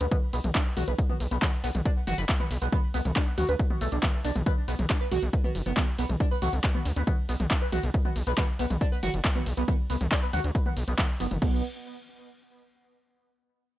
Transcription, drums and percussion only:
0.01 closed hi-hat medium
0.12 kick loud
0.12 closed hi-hat medium
0.12 mid tom medium
0.12 ride medium
0.33 open hi-hat loud
0.33 ride medium
0.44 closed hi-hat medium
0.44 mid tom medium
0.55 kick loud
0.55 clap loud
0.55 closed hi-hat medium
0.55 ride medium
0.77 open hi-hat loud
0.77 mid tom medium
0.77 ride medium
0.88 closed hi-hat medium
0.99 kick loud
0.99 closed hi-hat medium
0.99 ride medium
1.10 mid tom medium
1.20 open hi-hat loud
1.20 ride medium
1.31 closed hi-hat medium
1.42 kick loud
1.42 clap loud
1.42 closed hi-hat medium
1.42 mid tom medium
1.42 ride medium
1.64 open hi-hat loud
1.64 ride medium
1.75 closed hi-hat medium
1.75 mid tom medium
1.85 kick loud
1.85 closed hi-hat medium
1.85 ride medium
2.07 open hi-hat loud
2.07 mid tom medium
2.07 ride medium
2.18 closed hi-hat medium
2.29 kick loud
2.29 clap loud
2.29 closed hi-hat medium
2.29 ride medium
2.40 mid tom medium
2.51 open hi-hat loud
2.51 ride medium
2.62 closed hi-hat medium
2.72 kick loud
2.72 closed hi-hat medium
2.72 mid tom medium
2.72 ride medium
2.94 open hi-hat loud
2.94 ride medium
3.05 closed hi-hat medium
3.05 mid tom medium
3.16 kick loud
3.16 clap loud
3.16 closed hi-hat medium
3.16 ride medium
3.38 open hi-hat loud
3.38 mid tom medium
3.38 ride medium
3.49 closed hi-hat medium
3.59 kick loud
3.59 closed hi-hat medium
3.59 ride medium
3.70 mid tom medium
3.81 open hi-hat loud
3.81 ride medium
3.92 closed hi-hat medium
4.03 kick loud
4.03 clap loud
4.03 closed hi-hat medium
4.03 mid tom medium
4.03 ride medium
4.25 open hi-hat loud
4.25 ride medium
4.36 closed hi-hat medium
4.36 mid tom medium
4.46 kick loud
4.46 closed hi-hat medium
4.46 mid tom medium
4.46 ride medium
4.68 open hi-hat loud
4.68 ride medium
4.79 closed hi-hat medium
4.79 mid tom medium
4.90 kick loud
4.90 clap loud
4.90 closed hi-hat medium
4.90 ride medium
5.12 open hi-hat loud
5.12 mid tom medium
5.12 ride medium
5.22 closed hi-hat medium
5.33 kick loud
5.33 closed hi-hat medium
5.33 ride medium
5.44 mid tom medium
5.55 open hi-hat loud
5.55 ride medium
5.66 closed hi-hat medium
5.77 kick loud
5.77 clap loud
5.77 closed hi-hat medium
5.77 mid tom medium
5.77 ride medium
5.99 open hi-hat loud
5.99 ride medium
6.09 closed hi-hat medium
6.09 mid tom medium
6.20 kick loud
6.20 closed hi-hat medium
6.20 ride medium
6.42 open hi-hat loud
6.42 mid tom medium
6.42 ride medium
6.53 closed hi-hat medium
6.64 kick loud
6.64 clap loud
6.64 closed hi-hat medium
6.64 ride medium
6.75 mid tom medium
6.85 open hi-hat loud
6.85 ride medium
6.96 closed hi-hat medium
7.07 kick loud
7.07 closed hi-hat medium
7.07 mid tom medium
7.07 ride medium
7.29 open hi-hat loud
7.29 ride medium
7.40 closed hi-hat medium
7.40 mid tom medium
7.51 kick loud
7.51 clap loud
7.51 closed hi-hat medium
7.51 ride medium
7.72 open hi-hat loud
7.72 mid tom medium
7.72 ride medium
7.83 closed hi-hat medium
7.94 kick loud
7.94 closed hi-hat medium
7.94 ride medium
8.05 mid tom medium
8.16 open hi-hat loud
8.16 ride medium
8.27 closed hi-hat medium
8.38 kick loud
8.38 clap loud
8.38 closed hi-hat medium
8.38 mid tom medium
8.38 ride medium
8.59 open hi-hat loud
8.59 ride medium
8.70 closed hi-hat medium
8.70 mid tom medium
8.81 kick loud
8.81 closed hi-hat medium
8.81 ride medium
9.03 open hi-hat loud
9.03 mid tom medium
9.03 ride medium
9.14 closed hi-hat medium
9.25 kick loud
9.25 clap loud
9.25 closed hi-hat medium
9.25 ride medium
9.36 mid tom medium
9.46 open hi-hat loud
9.46 ride medium
9.57 closed hi-hat medium
9.68 kick loud
9.68 closed hi-hat medium
9.68 mid tom medium
9.68 ride medium
9.90 open hi-hat loud
9.90 ride medium
10.01 closed hi-hat medium
10.01 mid tom medium
10.12 kick loud
10.12 clap loud
10.12 closed hi-hat medium
10.12 ride medium
10.33 open hi-hat loud
10.33 mid tom medium
10.33 ride medium
10.44 closed hi-hat medium
10.55 kick loud
10.55 closed hi-hat medium
10.55 ride medium
10.66 mid tom medium
10.77 open hi-hat loud
10.77 ride medium
10.88 closed hi-hat medium
10.98 kick loud
10.98 clap loud
10.98 closed hi-hat medium
10.98 mid tom medium
10.98 ride medium
11.20 open hi-hat loud
11.20 ride medium
11.31 closed hi-hat medium
11.31 mid tom medium
11.42 kick loud
11.42 crash medium

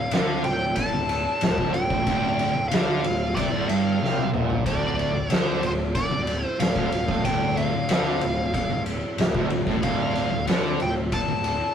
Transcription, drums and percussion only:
0.11 snare loud
0.11 ride loud
0.44 ride medium
0.76 kick loud
0.76 ride medium
1.09 ride medium
1.41 snare loud
1.41 ride loud
1.58 kick loud
1.74 ride medium
1.90 kick loud
2.07 kick loud
2.07 ride medium
2.39 ride medium
2.71 snare loud
2.71 ride loud
3.04 ride medium
3.37 kick medium
3.37 ride medium
3.69 ride medium
4.04 snare medium
4.18 high tom medium
4.34 mid tom medium
4.50 floor tom medium
4.66 kick loud
4.66 ride medium
4.99 ride medium
5.30 snare loud
5.30 ride loud
5.63 ride medium
5.95 kick loud
5.95 ride medium
6.27 ride medium
6.60 snare loud
6.60 ride loud
6.76 kick loud
6.92 ride medium
7.08 kick loud
7.08 snare soft
7.25 kick medium
7.25 ride medium
7.57 ride medium
7.89 snare loud
7.89 ride loud
8.21 ride medium
8.54 kick medium
8.54 ride medium
8.86 ride medium
9.18 snare loud
9.18 ride medium
9.35 kick loud
9.50 ride medium
9.67 kick loud
9.67 snare soft
9.83 kick loud
9.83 ride medium
10.15 ride medium
10.47 snare loud
10.47 ride medium
10.80 ride medium
11.12 kick loud
11.12 ride medium
11.44 ride medium

